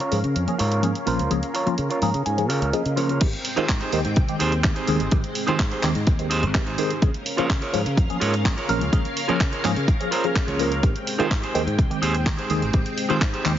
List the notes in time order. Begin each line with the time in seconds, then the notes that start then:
Already playing: C#4 A#4 F5
0.00 F4 A#4 C#5, closed hi-hat
0.11 G#2 F3 A#3 C#4 G#4, open hi-hat
0.24 C#3, closed hi-hat
0.35 F2, muted clean electric guitar stroke, closed hi-hat
0.47 F3 A#3 C#4 G#4, muted clean electric guitar stroke, closed hi-hat
0.58 G#2 F4 A#4 C#5, open hi-hat
0.72 closed hi-hat
0.82 F3 A#3 C#4 G#4, closed hi-hat
0.95 closed hi-hat
1.06 A#1 F3 A#3 C#4 F4 A#4 C5, open hi-hat
1.19 C#2, closed hi-hat
1.30 C#2 F3 A#3 C#4 G#4, closed hi-hat
1.43 closed hi-hat
1.54 F4 A#4 C#5, open hi-hat
1.66 F3 A#3 C#4 F4, muted fingered electric bass stroke, closed hi-hat
1.77 C#3, muted clean electric guitar stroke, closed hi-hat
1.90 F4 A#4 C#5, closed hi-hat
2.02 G#2 F3 A#3 C#4 G#4 A#5, open hi-hat
2.14 C#3, closed hi-hat
2.25 G#2 G#5, muted clean electric guitar stroke, closed hi-hat
2.37 F3 A#3 C#4 G#4, muted clean electric guitar stroke, closed hi-hat
2.49 C#3 F4 A#4 C#5 F5, open hi-hat
2.62 C#2, closed hi-hat
2.73 F3 A#3 C#4 G#4 D#5, closed hi-hat
2.85 C#3, closed hi-hat
2.96 F3 A#3 C#4 F4 A#4 C#5, open hi-hat
3.09 closed hi-hat
3.21 G#1 D#3 G#3 C4 G4 G5, kick, closed hi-hat, crash
3.33 closed hi-hat
3.45 open hi-hat
3.56 D#3 G#3 C4 D#4 F4 G4 G#4 C5, muted fingered electric bass stroke, closed hi-hat
3.69 G#2, kick, clap, closed hi-hat
3.80 D#4 G4 G#4 C5, closed hi-hat
3.92 D#2 D#3 G#3 C4 G4, open hi-hat
4.05 G#2, closed hi-hat
4.16 C2, muted clean electric guitar stroke, kick, closed hi-hat
4.29 D#3 G#3 C4 G4, closed hi-hat
4.39 D#2 D#4 G4 G#4 C5, open hi-hat
4.52 closed hi-hat
4.63 D#3 G#3 C4 G4, muted clean electric guitar stroke, kick, clap, closed hi-hat
4.75 D#4 G4 G#4 C5, closed hi-hat
4.87 D#2 D#3 G#3 C4 G#4, open hi-hat
5.00 G#1, closed hi-hat
5.11 D#3 G#3 C4 G4, kick, closed hi-hat
5.24 closed hi-hat
5.35 open hi-hat
5.47 D#3 G#3 C4 D#4 F4 G4 G#4 C5, muted fingered electric bass stroke, closed hi-hat
5.59 G#2, kick, clap, closed hi-hat
5.71 D#4 G4 G#4 C5, closed hi-hat
5.83 D#2 D#3 G#3 C4 G4, clap, open hi-hat
5.95 G#2, closed hi-hat
6.06 D#2, muted clean electric guitar stroke, kick, closed hi-hat
6.19 D#3 G#3 C4 G4, closed hi-hat
6.30 D#4 G4 G#4 C5, open hi-hat
6.43 G#1, closed hi-hat
6.54 D#3 G#3 C4 G4, kick, clap, closed hi-hat
6.66 D#4 G4 G#4 C5, closed hi-hat
6.78 D#3 G#3 C4 G#4, open hi-hat
6.90 closed hi-hat
7.02 C#2 F3 A#3 C#4 G#4 A#4 F5, kick, closed hi-hat
7.14 closed hi-hat
7.26 open hi-hat
7.37 F3 A#3 C#4 F4 G#4 A#4 C#5, muted fingered electric bass stroke, closed hi-hat
7.50 C#3, kick, clap, closed hi-hat
7.61 F4 G#4 A#4 C#5, closed hi-hat
7.73 G#2 F3 A#3 C#4 G#4, open hi-hat
7.86 C#3, closed hi-hat
7.96 F2, muted clean electric guitar stroke, kick, closed hi-hat
8.09 F3 A#3 C#4 G#4, closed hi-hat
8.20 G#2 F4 G#4 A#4 C#5, open hi-hat
8.34 closed hi-hat
8.44 F3 A#3 C#4 G#4, kick, clap, closed hi-hat
8.56 F4 G#4 A#4 C#5, closed hi-hat
8.68 A#1 F3 A#3 C#4 A#4, open hi-hat
8.81 C#2, closed hi-hat
8.92 F3 A#3 C#4 G#4, kick, closed hi-hat
9.05 closed hi-hat
9.17 open hi-hat
9.28 F3 A#3 C#4 F4 G#4 A#4 C#5, muted fingered electric bass stroke, closed hi-hat
9.40 C#3, kick, clap, closed hi-hat
9.51 F4 G#4 A#4 C#5, closed hi-hat
9.64 G#2 F3 A#3 C#4 G#4, clap, open hi-hat
9.76 C#3, closed hi-hat
9.87 muted clean electric guitar stroke, kick, closed hi-hat
10.00 F3 A#3 C#4 G#4, closed hi-hat
10.11 F4 G#4 A#4 C5, open hi-hat
10.24 F3 A#3 C#4 G#4, closed hi-hat
10.36 kick, clap, closed hi-hat
10.47 C#2 F4 G#4 A#4 C#5, closed hi-hat
10.59 F3 A#3 C#4 A#4, open hi-hat
10.72 closed hi-hat
10.83 G#1 D#3 G#3 C4 G4 G5, kick, closed hi-hat
10.96 closed hi-hat
11.07 open hi-hat
11.18 D#3 G#3 C4 D#4 F4 G4 G#4 C5, muted fingered electric bass stroke, closed hi-hat
11.31 G#2, kick, clap, closed hi-hat
11.42 D#4 G4 G#4 C5, closed hi-hat
11.54 D#2 D#3 G#3 C4 G4, open hi-hat
11.67 G#2, closed hi-hat
11.78 C2, muted clean electric guitar stroke, kick, closed hi-hat
11.90 D#3 G#3 C4 G4, closed hi-hat
12.02 D#2 D#4 G4 G#4 C5, open hi-hat
12.15 closed hi-hat
12.26 D#3 G#3 C4 G4, kick, clap, closed hi-hat
12.37 D#4 G4 G#4 C5, closed hi-hat
12.50 D#2 D#3 G#3 C4 G#4, open hi-hat
12.62 G#1, closed hi-hat
12.73 G#1 D#3 G#3 C4 G4, kick, closed hi-hat
12.86 closed hi-hat
12.98 open hi-hat
13.09 D#3 G#3 C4 D#4 F4 G4 G#4 C5, muted fingered electric bass stroke, closed hi-hat
13.21 G#2, kick, clap, closed hi-hat
13.33 D#4 G4 G#4 C5, closed hi-hat
13.45 D#2 D#3 G#3 C4 G4, clap, open hi-hat